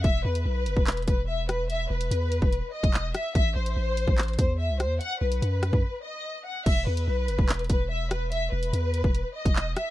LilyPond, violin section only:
\new Staff \with { instrumentName = "Violin section" } { \time 4/4 \key b \phrygian \tempo 4 = 145 e''8 b'2 b'8 e''8 b'8 | e''8 b'2 dis''4 e''8 | e''8 c''2 c''8 e''8 c''8 | fis''8 b'2 dis''4 fis''8 |
e''8 b'2 b'8 e''8 b'8 | e''8 b'2 dis''4 e''8 | }